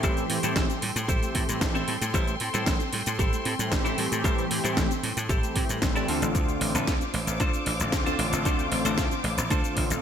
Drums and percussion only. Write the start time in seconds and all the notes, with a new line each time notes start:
0.03 kick, closed hi-hat, shaker
0.17 closed hi-hat, shaker
0.30 open hi-hat
0.43 closed hi-hat, shaker
0.56 kick, snare, closed hi-hat, shaker
0.70 closed hi-hat, shaker
0.82 open hi-hat
0.96 closed hi-hat, shaker
1.09 kick, closed hi-hat, shaker
1.23 closed hi-hat, shaker
1.35 kick, open hi-hat
1.49 closed hi-hat, shaker
1.61 kick, snare, closed hi-hat, shaker
1.75 closed hi-hat, shaker
1.88 open hi-hat
2.02 closed hi-hat, shaker
2.14 kick, closed hi-hat, shaker
2.27 closed hi-hat, shaker
2.40 open hi-hat
2.54 closed hi-hat, shaker
2.66 kick, snare, closed hi-hat, shaker
2.80 closed hi-hat, shaker
2.93 open hi-hat
3.06 closed hi-hat, shaker
3.19 kick, closed hi-hat, shaker
3.33 closed hi-hat, shaker
3.45 open hi-hat
3.59 closed hi-hat, shaker
3.72 kick, snare, closed hi-hat, shaker
3.85 closed hi-hat, shaker
3.98 open hi-hat
4.12 closed hi-hat, shaker
4.24 kick, closed hi-hat, shaker
4.38 closed hi-hat, shaker
4.51 open hi-hat
4.65 closed hi-hat, shaker
4.77 kick, snare, closed hi-hat, shaker
4.91 closed hi-hat, shaker
5.03 open hi-hat
5.17 closed hi-hat, shaker
5.29 kick, closed hi-hat, shaker
5.43 closed hi-hat, shaker
5.56 kick, open hi-hat
5.69 closed hi-hat, shaker
5.82 kick, snare, closed hi-hat, shaker
5.96 closed hi-hat, shaker
6.08 open hi-hat
6.22 closed hi-hat, shaker
6.35 kick, closed hi-hat, shaker
6.48 closed hi-hat, shaker
6.61 open hi-hat
6.75 closed hi-hat, shaker
6.87 kick, snare, closed hi-hat, shaker
7.01 closed hi-hat, shaker
7.14 open hi-hat
7.27 closed hi-hat, shaker
7.40 kick, closed hi-hat, shaker
7.54 closed hi-hat, shaker
7.66 open hi-hat
7.80 closed hi-hat, shaker
7.92 kick, snare, closed hi-hat, shaker
8.06 closed hi-hat, shaker
8.19 open hi-hat
8.33 closed hi-hat, shaker
8.45 kick, closed hi-hat, shaker
8.59 closed hi-hat, shaker
8.72 open hi-hat
8.85 closed hi-hat, shaker
8.98 kick, snare, closed hi-hat, shaker
9.11 closed hi-hat, shaker
9.24 open hi-hat
9.38 closed hi-hat, shaker
9.50 kick, closed hi-hat, shaker
9.64 closed hi-hat, shaker
9.77 kick, open hi-hat
9.90 closed hi-hat, shaker